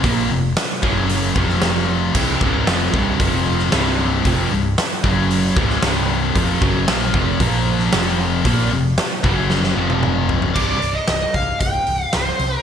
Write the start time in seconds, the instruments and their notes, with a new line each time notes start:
0.03 fingered electric bass A#1, distorted electric guitar A#2 F3 A#3, kick, open hi-hat
0.30 fingered electric bass F1, distorted electric guitar F2 C3
0.57 snare, open hi-hat
0.82 fingered electric bass F#1, distorted electric guitar F#2 C#3 F#3, kick
1.09 open hi-hat
1.35 fingered electric bass F1, distorted electric guitar F2 C3 F3, kick
1.49 snare
1.62 snare, open hi-hat
2.15 fingered electric bass C1, distorted electric guitar C2 G2 C3, kick, crash
2.41 fingered electric bass C#1, distorted electric guitar C#2 G#2 C#3, kick
2.67 fingered electric bass F1, distorted electric guitar F2 C3 F3, snare, open hi-hat
2.93 fingered electric bass C1, distorted electric guitar C2 G2 C3, kick
3.20 fingered electric bass F1, distorted electric guitar F2 C3 F3, kick, open hi-hat
3.59 snare
3.72 fingered electric bass C1, distorted electric guitar C2 G2 C3, snare, open hi-hat
4.25 fingered electric bass F1, distorted electric guitar F2 C3 F3, kick, open hi-hat
4.52 fingered electric bass C1, distorted electric guitar C2 G2
4.78 snare, open hi-hat
5.04 fingered electric bass F#1, distorted electric guitar F#2 C#3 F#3, kick
5.30 open hi-hat
5.57 fingered electric bass C#1, distorted electric guitar C#2 G#2 C#3, kick
5.70 snare
5.82 fingered electric bass C1, distorted electric guitar C2 G2 C3, snare, open hi-hat
6.36 fingered electric bass F1, distorted electric guitar F2 C3 F3, kick, open hi-hat
6.62 fingered electric bass F#1, distorted electric guitar F#2 C#3 F#3, kick
6.88 fingered electric bass A#1, distorted electric guitar A#2 F3 A#3, snare, open hi-hat
7.14 fingered electric bass F1, distorted electric guitar F2 C3 F3, kick
7.40 fingered electric bass A#1, distorted electric guitar A#2 F3 A#3, kick, open hi-hat
7.79 snare
7.92 fingered electric bass F1, distorted electric guitar F2 C3 F3, snare, open hi-hat
8.45 fingered electric bass A#1, distorted electric guitar A#2 F3 A#3, kick, open hi-hat
8.71 fingered electric bass F1, distorted electric guitar F2 C3
8.98 snare, open hi-hat
9.23 fingered electric bass F#1, distorted electric guitar F#2 C#3 F#3, kick
9.50 snare
9.64 snare
9.76 fingered electric bass F1, distorted electric guitar F2 C3 F3
9.90 high tom
10.03 mid tom
10.29 floor tom
10.42 floor tom
10.54 fingered electric bass C1, distorted electric guitar C2 G2 C3, lead electric guitar D5, kick, crash
10.82 fingered electric bass C1, open hi-hat
10.95 lead electric guitar D#5
11.08 fingered electric bass C1, snare, open hi-hat
11.34 fingered electric bass C1, lead electric guitar F5, kick, open hi-hat
11.60 fingered electric bass C1, lead electric guitar G5, kick, open hi-hat
11.87 fingered electric bass C1, open hi-hat
12.04 lead electric guitar F5
12.13 fingered electric bass C1, lead electric guitar C5, snare, open hi-hat
12.39 fingered electric bass C2, open hi-hat
12.57 lead electric guitar A#4